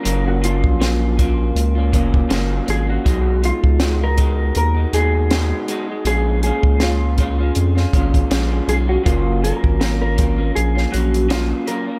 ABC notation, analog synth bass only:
X:1
M:4/4
L:1/16
Q:"Swing 16ths" 1/4=80
K:F#
V:1 name="Analog synth bass" clef=bass
F,,,3 A,,,4- A,,, C,,2 E,,,2 F,,,2 G,,,2 | B,,,3 C,,4- C,, D,,2 D,,4 z2 | A,,,3 C,,4- C,, E,,2 G,,,2 A,,,2 B,,,2 | F,,,3 G,,,4- G,,, A,,,2 A,,,4 z2 |]